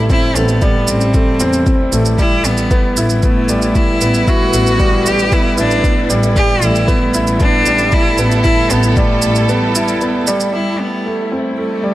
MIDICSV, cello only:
0, 0, Header, 1, 2, 480
1, 0, Start_track
1, 0, Tempo, 521739
1, 92, Time_signature, 4, 2, 24, 8
1, 10985, End_track
2, 0, Start_track
2, 0, Title_t, "Cello"
2, 0, Program_c, 0, 42
2, 105, Note_on_c, 0, 64, 98
2, 337, Note_on_c, 0, 59, 90
2, 351, Note_off_c, 0, 64, 0
2, 827, Note_on_c, 0, 60, 92
2, 841, Note_off_c, 0, 59, 0
2, 1780, Note_off_c, 0, 60, 0
2, 2015, Note_on_c, 0, 64, 102
2, 2257, Note_on_c, 0, 59, 93
2, 2271, Note_off_c, 0, 64, 0
2, 2735, Note_off_c, 0, 59, 0
2, 2977, Note_on_c, 0, 57, 87
2, 3458, Note_on_c, 0, 64, 96
2, 3472, Note_off_c, 0, 57, 0
2, 3944, Note_on_c, 0, 66, 103
2, 3957, Note_off_c, 0, 64, 0
2, 4667, Note_on_c, 0, 67, 106
2, 4680, Note_off_c, 0, 66, 0
2, 4904, Note_on_c, 0, 64, 96
2, 4918, Note_off_c, 0, 67, 0
2, 5138, Note_off_c, 0, 64, 0
2, 5148, Note_on_c, 0, 62, 94
2, 5587, Note_off_c, 0, 62, 0
2, 5858, Note_on_c, 0, 67, 115
2, 6105, Note_on_c, 0, 64, 98
2, 6119, Note_off_c, 0, 67, 0
2, 6578, Note_off_c, 0, 64, 0
2, 6810, Note_on_c, 0, 62, 109
2, 7298, Note_on_c, 0, 64, 111
2, 7311, Note_off_c, 0, 62, 0
2, 7655, Note_off_c, 0, 64, 0
2, 7766, Note_on_c, 0, 64, 105
2, 8011, Note_on_c, 0, 59, 90
2, 8025, Note_off_c, 0, 64, 0
2, 8255, Note_on_c, 0, 57, 94
2, 8269, Note_off_c, 0, 59, 0
2, 8732, Note_on_c, 0, 55, 87
2, 8746, Note_off_c, 0, 57, 0
2, 9452, Note_off_c, 0, 55, 0
2, 9691, Note_on_c, 0, 64, 83
2, 9930, Note_on_c, 0, 59, 74
2, 9944, Note_off_c, 0, 64, 0
2, 10411, Note_off_c, 0, 59, 0
2, 10655, Note_on_c, 0, 57, 68
2, 10985, Note_off_c, 0, 57, 0
2, 10985, End_track
0, 0, End_of_file